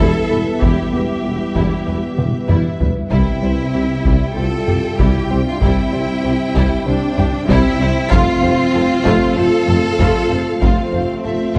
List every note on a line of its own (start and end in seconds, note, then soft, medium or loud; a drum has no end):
0.00 0.12 E1 medium
0.00 0.18 E3 medium
0.00 0.29 G3 medium
0.00 3.10 G3 medium
0.00 3.12 B3 medium
0.00 0.28 E4 medium
0.00 0.60 E4 loud
0.00 0.60 A4 loud
0.00 3.12 B4 medium
0.00 2.88 E5 medium
0.00 3.08 E5 medium
0.30 0.44 E1 soft
0.30 0.39 E2 medium
0.30 0.38 G3 medium
0.30 0.49 E4 medium
0.30 0.38 B4 medium
0.61 0.75 E1 medium
0.61 0.70 E2 medium
0.61 0.80 E3 loud
0.61 0.91 G3 medium
0.61 2.49 E4 medium
0.61 0.91 E4 medium
0.61 2.49 G4 medium
0.61 taiko medium
0.93 1.06 E1 medium
0.93 1.01 E2 soft
0.93 1.01 G3 soft
0.93 1.12 B3 medium
0.93 1.01 B4 soft
1.24 1.37 E1 soft
1.24 1.32 E2 soft
1.24 1.32 G3 soft
1.24 1.43 E4 medium
1.24 1.33 G4 soft
1.55 1.68 E1 medium
1.55 1.63 E2 medium
1.55 1.74 E3 loud
1.55 1.85 G3 medium
1.55 1.85 E4 medium
1.55 taiko medium
1.86 1.99 E1 soft
1.86 1.94 E2 soft
1.86 1.95 G3 soft
1.86 2.06 E4 medium
1.86 1.94 B4 medium
2.18 2.31 E1 soft
2.18 2.26 E2 medium
2.18 2.26 G3 medium
2.18 2.37 B3 medium
2.18 2.26 G4 soft
2.18 taiko mid medium
2.49 2.62 E1 medium
2.49 2.57 E2 medium
2.49 2.68 E3 medium
2.49 2.78 G3 medium
2.49 2.78 E4 medium
2.49 taiko low-mid medium
2.80 2.93 E1 medium
2.80 2.88 E2 medium
2.80 2.89 G3 medium
2.80 2.99 E4 medium
2.80 2.88 B4 medium
2.80 taiko low medium
3.11 3.19 C2 medium
3.11 3.25 C2 medium
3.11 3.31 C3 medium
3.11 8.12 C3 medium
3.11 3.41 G3 medium
3.11 8.08 G3 medium
3.11 4.33 C4 medium
3.11 3.41 E4 medium
3.11 4.33 E4 medium
3.11 8.12 G4 medium
3.11 8.12 E5 medium
3.11 8.08 G5 medium
3.11 taiko medium
3.43 3.51 C2 medium
3.43 3.56 C2 medium
3.43 3.62 G3 medium
3.43 3.51 G3 medium
3.43 3.51 C5 soft
3.74 3.82 C2 soft
3.74 3.87 C2 medium
3.74 3.82 G3 soft
3.74 3.93 C4 medium
3.74 3.83 G4 medium
4.05 4.14 C2 medium
4.05 4.19 C2 medium
4.05 4.24 C3 medium
4.05 4.34 G3 medium
4.05 4.35 E4 medium
4.05 taiko medium
4.36 4.45 C2 medium
4.36 4.50 C2 medium
4.36 4.45 G3 medium
4.36 4.56 C4 medium
4.36 4.99 F4 medium
4.36 4.99 A4 medium
4.36 4.44 C5 medium
4.68 4.76 C2 medium
4.68 4.81 C2 medium
4.68 4.87 G3 medium
4.68 4.76 G3 soft
4.68 4.76 G4 medium
4.68 taiko low-mid soft
4.99 5.12 C2 medium
4.99 5.08 C2 medium
4.99 5.18 C3 medium
4.99 5.28 G3 medium
4.99 5.29 E4 medium
4.99 5.47 E4 medium
4.99 5.46 G4 medium
4.99 taiko medium
5.30 5.43 C2 medium
5.30 5.39 C2 medium
5.30 5.39 G3 medium
5.30 5.49 C4 medium
5.30 5.39 C5 medium
5.46 5.62 D4 medium
5.46 5.62 F4 medium
5.61 5.70 C2 medium
5.61 5.74 C2 medium
5.61 5.80 C3 loud
5.61 5.91 G3 medium
5.61 6.84 C4 medium
5.61 6.84 E4 loud
5.61 5.92 E4 medium
5.61 taiko medium
5.93 6.01 C2 medium
5.93 6.06 C2 medium
5.93 6.01 G3 soft
5.93 6.12 G3 medium
5.93 6.01 C5 medium
6.23 6.37 C2 medium
6.23 6.33 C2 medium
6.23 6.31 G3 medium
6.23 6.43 C4 medium
6.23 6.33 G4 medium
6.55 6.64 C2 medium
6.55 6.68 C2 medium
6.55 6.74 C3 loud
6.55 6.84 G3 medium
6.55 6.85 E4 medium
6.55 taiko medium
6.86 6.99 C2 medium
6.86 6.95 C2 medium
6.86 6.94 G3 medium
6.86 7.05 C4 medium
6.86 7.48 C4 medium
6.86 7.48 D4 loud
6.86 6.95 C5 medium
7.17 7.30 C2 medium
7.17 7.26 C2 medium
7.17 7.25 G3 medium
7.17 7.37 G3 medium
7.17 7.27 G4 medium
7.17 taiko low-mid medium
7.49 7.61 C2 loud
7.49 7.57 C2 loud
7.49 7.68 C3 loud
7.49 7.78 G3 loud
7.49 8.10 C4 loud
7.49 8.10 E4 loud
7.49 7.79 E4 loud
7.49 taiko medium
7.80 7.93 C2 medium
7.80 7.88 C2 medium
7.80 7.88 G3 medium
7.80 7.99 C4 medium
7.80 7.89 C5 medium
8.11 8.23 F1 loud
8.11 8.20 F2 loud
8.11 8.30 F3 loud
8.11 8.41 A3 medium
8.11 11.59 A3 medium
8.11 9.34 C4 loud
8.11 11.59 C4 medium
8.11 9.37 F4 loud
8.11 8.41 F4 loud
8.11 11.59 F4 loud
8.11 11.59 C5 medium
8.11 11.14 F5 medium
8.11 taiko loud
8.42 8.55 F1 medium
8.42 8.51 F2 medium
8.42 8.51 A3 medium
8.42 8.62 C4 medium
8.42 8.51 C5 medium
8.74 8.86 F1 medium
8.74 8.82 F2 medium
8.74 8.82 A3 medium
8.74 8.93 F4 medium
8.74 8.82 A4 medium
9.05 9.18 F1 loud
9.05 9.13 F2 loud
9.05 9.24 F3 loud
9.05 9.35 A3 loud
9.05 9.35 F4 loud
9.05 taiko medium
9.36 9.49 F1 medium
9.36 9.44 F2 medium
9.36 9.44 A3 medium
9.36 9.55 F4 medium
9.36 10.62 F4 loud
9.36 10.62 A4 loud
9.36 9.45 C5 medium
9.68 9.80 F1 medium
9.68 9.76 F2 medium
9.68 9.76 A3 medium
9.68 9.86 C4 medium
9.68 9.77 A4 medium
9.68 taiko low-mid medium
9.99 10.11 F1 loud
9.99 10.07 F2 loud
9.99 10.18 F3 medium
9.99 10.29 A3 medium
9.99 10.29 F4 medium
9.99 taiko medium
10.30 10.43 F1 medium
10.30 10.38 F2 medium
10.30 10.39 A3 medium
10.30 10.49 F4 medium
10.30 10.40 C5 medium
10.61 10.74 F1 medium
10.61 10.69 F2 medium
10.61 10.81 F3 loud
10.61 11.59 A3 medium
10.61 10.91 A3 medium
10.61 11.59 C4 medium
10.61 10.91 F4 medium
10.61 taiko medium
10.92 11.05 F1 medium
10.92 11.00 F2 soft
10.92 11.01 A3 soft
10.92 11.12 C4 medium
10.92 11.02 C5 medium
11.24 11.37 F1 soft
11.24 11.32 F2 soft
11.24 11.33 A3 soft
11.24 11.43 F4 medium
11.24 11.33 A4 soft
11.24 11.53 E5 medium
11.55 11.59 F1 medium
11.55 11.59 F2 medium
11.55 11.59 A3 medium
11.55 11.59 F5 medium
11.55 taiko medium